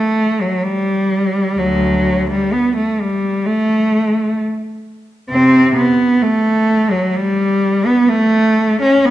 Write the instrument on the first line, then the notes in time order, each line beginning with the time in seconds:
cello
Already playing: A3
0.41 F#3
0.63 G3
1.58 D2 F#3
2.30 G3
2.53 B3
2.76 A3
3.01 G3
3.46 A3
5.30 C3 C4
5.77 B3
6.22 A3
6.91 F#3
7.15 G3
7.86 B3
8.09 A3
8.82 C#4
9.05 B3